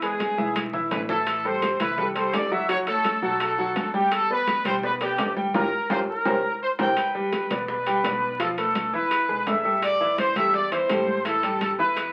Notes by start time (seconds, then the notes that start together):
Already playing: E2
0.02 G#3 G#4 B4, high conga, high timbale
0.20 high bongo, high conga, high timbale
0.38 B1 E3 E4 E5, high bongo, high conga
0.56 high bongo, high conga, high timbale
0.73 E3 E4 E5, high bongo, low conga
0.91 A1 B4, high bongo, low bongo, low conga, high timbale, low timbale
1.09 E3 E4 A4 E5, high bongo, low conga
1.27 high bongo, high conga, high timbale
1.45 G3 G4 A4 C5, high conga
1.62 high bongo, high conga, high timbale
1.80 C2 E3 E4 B4 E5, high bongo, high conga, low conga, high timbale
1.98 G3 G4 A4 B4, high bongo, high conga, low conga
2.15 G3 G4 A4 C5, high bongo, high conga, high timbale
2.33 F#1 D5, high bongo, low bongo, high conga, high timbale, low timbale
2.51 F#3 F#4 E5 F#5, high bongo
2.69 F#3 F#4 C#5 F#5, high bongo, high conga, high timbale
2.87 A3 A4 C#5, high conga, high timbale
3.04 high bongo, high conga, high timbale
3.22 B1 F#3 F#4 A4 F#5, high bongo, high conga
3.40 A4, high bongo, high conga, high timbale
3.58 F#3 F#4 F#5, high bongo, high conga
3.76 E2, high bongo, low bongo, high conga, high timbale
3.94 G3 G4 G5, high bongo, high conga
4.12 A4, high bongo, high timbale
4.30 B3 B4 D5, high conga
4.47 high bongo, high conga, high timbale
4.65 B1 G3 G4 C5 G5, high bongo, high conga, low conga, high timbale
4.83 B3 B4 D5, high bongo, high conga
5.01 B3 G4 B4 D5, high bongo, high conga, high timbale
5.18 G1, high bongo, low bongo, high conga, high timbale, low timbale
5.36 G3 G4 G5, high bongo, high conga
5.54 G1 F4 G4 A#4, low bongo, high conga, high timbale
5.90 G1 F4 G4 A#4 C5, low bongo, high conga, high timbale
6.08 A#4
6.25 C2 G4 A#4 C5, low bongo, high conga, high timbale
6.62 C5
6.79 C2 G4 A#4 C5 G5, low bongo, high conga, high timbale
6.97 B4, high bongo, high conga, high timbale
7.15 G3 G4 G5, high conga
7.32 high bongo, high conga, high timbale
7.50 B1 B3 B4 D5, high bongo, high conga, low conga, high timbale
7.68 B4, high bongo, high conga
7.86 G3 G4 G5, high bongo, high conga, high timbale
8.04 B1 B3 B4 D5, high bongo, low bongo, high conga, high timbale
8.22 high bongo
8.39 F3 F4 A4 F5, high bongo, high conga, high timbale
8.57 A3 A4 B4, high conga, high timbale
8.75 high bongo, high conga, high timbale
8.93 E2 E3 E4 B4 E5, high bongo, high conga
9.11 high bongo, high conga, high timbale
9.29 B1 G#3 G#4 B4, high bongo, high conga
9.46 A1 E5, high bongo, low bongo, high conga, high timbale, low timbale
9.65 G3 G4 A4, high bongo
9.82 D5, high bongo, high conga, high timbale
10.00 E3 E4 E5, high conga
10.18 C5, high bongo, high conga, high timbale
10.36 E2 G3 G4 A4 E5, high bongo, high conga, low conga, high timbale
10.54 D5, high bongo, high conga
10.72 E3 E4 C5 E5, high bongo, high conga, high timbale
10.89 A1 G3 G4 A4, high bongo, low bongo, high conga, high timbale
11.07 high bongo, high conga
11.25 E3 E4 A4 E5, high bongo, high conga, high timbale
11.43 G3 G4 A4, high conga, high timbale
11.61 A4, high bongo, high conga, high timbale
11.79 E2 E3 E4 B4 E5, high bongo, high conga
11.97 high bongo, high conga, high timbale